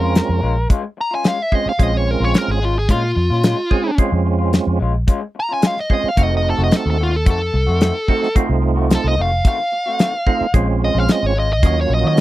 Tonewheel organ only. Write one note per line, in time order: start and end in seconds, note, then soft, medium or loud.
0.00 0.41 G#3 medium
0.00 0.41 C4 medium
0.00 0.41 C#4 medium
0.00 0.41 F4 medium
1.52 1.72 G#3 medium
1.52 1.72 C4 medium
1.52 1.72 C#4 medium
1.52 1.72 F4 medium
1.79 2.59 G#3 medium
1.79 2.60 C4 medium
1.79 2.60 C#4 medium
1.79 2.59 F4 medium
3.71 3.91 G#3 medium
3.71 3.91 C4 medium
3.71 3.91 C#4 medium
3.71 3.91 G#4 medium
3.99 4.79 G#3 medium
3.99 4.79 C4 medium
3.99 4.79 C#4 medium
3.99 4.79 F4 medium
5.90 6.10 G#3 medium
5.90 6.10 C4 medium
5.90 6.11 C#4 medium
5.90 6.11 F4 medium
6.18 6.98 A3 medium
6.18 6.98 C4 medium
6.18 6.98 D#4 medium
6.18 6.98 F#4 medium
8.09 8.29 A3 medium
8.09 8.29 C4 medium
8.09 8.29 D#4 medium
8.09 8.29 F#4 medium
8.36 9.16 A3 loud
8.36 9.16 C4 medium
8.36 9.16 D#4 medium
8.36 9.16 F4 loud
10.27 10.47 A3 medium
10.27 10.47 C4 medium
10.27 10.47 D#4 medium
10.27 10.47 F4 loud
10.54 11.34 G#3 medium
10.54 11.34 C4 medium
10.54 11.34 C#4 medium
10.54 11.34 F4 loud
11.63 12.21 F#3 medium
11.63 12.21 A#3 medium
11.63 12.21 C#4 medium
11.63 12.21 F4 medium